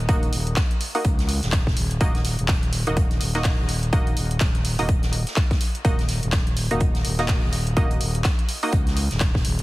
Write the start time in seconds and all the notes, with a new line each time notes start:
0.09 D#1 A#3 D#4 F#4 D#5, kick, closed hi-hat
0.22 closed hi-hat
0.33 D#1, closed hi-hat, open hi-hat
0.47 closed hi-hat
0.56 kick, snare, clap, closed hi-hat
0.71 closed hi-hat
0.81 closed hi-hat, open hi-hat
0.95 A#3 D#4 F#4 D#5, open hi-hat
1.04 C#2, kick, closed hi-hat
1.19 snare, closed hi-hat
1.29 closed hi-hat, open hi-hat
1.43 D#1, snare, closed hi-hat
1.52 kick, snare, clap, closed hi-hat
1.67 kick, snare
1.76 D#1, closed hi-hat, open hi-hat
1.91 closed hi-hat
2.01 D#1 A#3 D#4 F#4 D#5, kick, closed hi-hat
2.15 snare, closed hi-hat
2.25 snare, closed hi-hat, open hi-hat
2.39 D#1, closed hi-hat
2.48 kick, snare, clap, closed hi-hat
2.63 closed hi-hat
2.72 closed hi-hat, open hi-hat
2.87 D#1 A#3 D#4 F#4 D#5, closed hi-hat
2.97 kick, closed hi-hat
3.11 snare, closed hi-hat
3.21 D#1, closed hi-hat, open hi-hat
3.35 A#3 D#4 F#4 D#5, snare, closed hi-hat
3.44 kick, snare, clap, closed hi-hat, open hi-hat
3.59 D#1
3.69 closed hi-hat, open hi-hat
3.83 closed hi-hat
3.93 D#1 A#3 D#4 F#4 D#5, kick, closed hi-hat
4.07 closed hi-hat
4.17 D#1, closed hi-hat, open hi-hat
4.31 closed hi-hat
4.40 D#1, kick, snare, clap, closed hi-hat
4.55 closed hi-hat
4.65 closed hi-hat, open hi-hat
4.79 D#1 A#3 D#4 F#4 D#5, open hi-hat
4.89 kick, closed hi-hat
5.03 snare, closed hi-hat
5.12 closed hi-hat, open hi-hat
5.27 snare, closed hi-hat
5.36 kick, snare, clap, closed hi-hat
5.51 kick, snare, closed hi-hat
5.61 closed hi-hat, open hi-hat
5.75 closed hi-hat
5.85 D#1 A#3 D#4 F#4 D#5, kick, closed hi-hat
5.99 snare, closed hi-hat
6.08 snare, closed hi-hat, open hi-hat
6.23 D#1, closed hi-hat
6.32 kick, snare, clap, closed hi-hat
6.47 closed hi-hat
6.56 closed hi-hat, open hi-hat
6.71 D#1 A#3 D#4 F#4 D#5, closed hi-hat
6.80 kick, closed hi-hat
6.95 snare, closed hi-hat
7.05 D#1, closed hi-hat, open hi-hat
7.19 A#3 D#4 F#4 D#5, snare, closed hi-hat
7.28 kick, snare, clap, closed hi-hat, open hi-hat
7.43 D#1
7.53 closed hi-hat, open hi-hat
7.67 closed hi-hat
7.76 D#1 A#3 D#4 F#4 D#5, kick, closed hi-hat
7.91 closed hi-hat
8.01 D#1, closed hi-hat, open hi-hat
8.15 closed hi-hat
8.24 kick, snare, clap, closed hi-hat
8.39 closed hi-hat
8.49 closed hi-hat, open hi-hat
8.63 A#3 D#4 F#4 D#5, open hi-hat
8.72 C#2, kick, closed hi-hat
8.87 snare, closed hi-hat
8.96 closed hi-hat, open hi-hat
9.11 D#1, snare, closed hi-hat
9.20 kick, snare, clap, closed hi-hat
9.35 kick, snare
9.45 D#1, closed hi-hat, open hi-hat
9.59 closed hi-hat